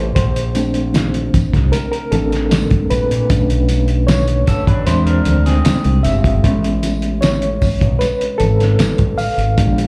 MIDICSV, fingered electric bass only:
0, 0, Header, 1, 3, 480
1, 0, Start_track
1, 0, Tempo, 784314
1, 99, Time_signature, 4, 2, 24, 8
1, 6040, End_track
2, 0, Start_track
2, 0, Title_t, "Fingered electric bass"
2, 0, Program_c, 0, 33
2, 0, Note_on_c, 0, 33, 83
2, 68, Note_off_c, 0, 33, 0
2, 99, Note_on_c, 0, 34, 94
2, 795, Note_off_c, 0, 34, 0
2, 940, Note_on_c, 0, 36, 92
2, 1045, Note_off_c, 0, 36, 0
2, 1298, Note_on_c, 0, 33, 83
2, 1613, Note_off_c, 0, 33, 0
2, 1781, Note_on_c, 0, 34, 83
2, 1885, Note_off_c, 0, 34, 0
2, 1903, Note_on_c, 0, 46, 72
2, 2007, Note_off_c, 0, 46, 0
2, 2019, Note_on_c, 0, 35, 84
2, 2716, Note_off_c, 0, 35, 0
2, 2860, Note_on_c, 0, 33, 83
2, 2965, Note_off_c, 0, 33, 0
2, 2978, Note_on_c, 0, 40, 89
2, 3189, Note_off_c, 0, 40, 0
2, 3219, Note_on_c, 0, 38, 70
2, 3429, Note_off_c, 0, 38, 0
2, 3581, Note_on_c, 0, 36, 73
2, 3699, Note_on_c, 0, 31, 84
2, 3708, Note_off_c, 0, 36, 0
2, 3942, Note_off_c, 0, 31, 0
2, 3942, Note_on_c, 0, 33, 96
2, 4637, Note_off_c, 0, 33, 0
2, 4783, Note_on_c, 0, 35, 83
2, 4887, Note_off_c, 0, 35, 0
2, 5142, Note_on_c, 0, 32, 80
2, 5351, Note_off_c, 0, 32, 0
2, 5500, Note_on_c, 0, 33, 70
2, 5605, Note_off_c, 0, 33, 0
2, 5738, Note_on_c, 0, 32, 77
2, 5844, Note_off_c, 0, 32, 0
2, 5862, Note_on_c, 0, 34, 98
2, 6040, Note_off_c, 0, 34, 0
2, 6040, End_track
3, 0, Start_track
3, 0, Title_t, "Muted fingered electric bass strokes"
3, 822, Note_on_c, 9, 29, 41
3, 883, Note_off_c, 9, 29, 0
3, 2740, Note_on_c, 9, 29, 40
3, 2801, Note_off_c, 9, 29, 0
3, 4662, Note_on_c, 9, 29, 44
3, 4723, Note_off_c, 9, 29, 0
3, 5382, Note_on_c, 9, 29, 44
3, 5443, Note_off_c, 9, 29, 0
3, 6040, End_track
0, 0, End_of_file